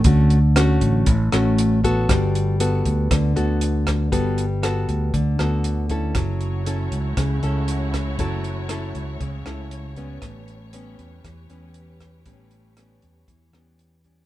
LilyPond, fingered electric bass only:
\new Staff \with { instrumentName = "Fingered electric bass" } { \clef bass \time 4/4 \key fis \phrygian \tempo 4 = 118 d,4. a,,8 a,,8 a,,4. | g,,4. d,8 d,8 d,4. | g,,4. d,8 d,8 d,4. | fis,,4. cis,8 cis,8 cis,4. |
fis,,4. cis,8 cis,8 cis,4. | a,,4. e,8 e,8 e,4. | a,,4. e,8 e,8 e,4. | }